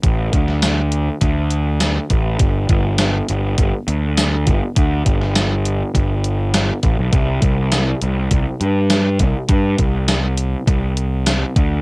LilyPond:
<<
  \new Staff \with { instrumentName = "Picked electric bass" } { \clef bass \time 4/4 \key c \lydian \tempo 4 = 102 a,,8 d,4. d,4. a,,8 | g,,8 g,,4 g,,8 g,,16 r16 d,4 g,,16 r16 | d,8 g,,4. g,,4. a,,16 b,,16 | c,8 c,4 c,8 c,16 r16 g,4 c,16 r16 |
g,8 c,4. c,4. d,8 | }
  \new DrumStaff \with { instrumentName = "Drums" } \drummode { \time 4/4 <hh bd>8 <hh bd>16 sn16 <hh sn tamb>8 hh8 <hh bd>8 hh8 <hh sn tamb>8 <hh bd>8 | <hh bd>8 <hh bd>8 <hh sn tamb>8 hh8 <hh bd>8 hh8 <hh sn tamb>8 <hh bd>8 | <hh bd>8 <hh bd>16 sn16 <hh sn tamb>8 hh8 <hh bd>8 hh8 <hh sn tamb>8 <hh bd>8 | <hh bd>8 <hh bd>8 <hh sn tamb>8 hh8 <hh bd>8 hh8 <hh sn tamb>8 <hh bd>8 |
<hh bd>8 <hh bd>8 <hh sn tamb>8 hh8 <hh bd>8 hh8 <hh sn tamb>8 <hh bd>8 | }
>>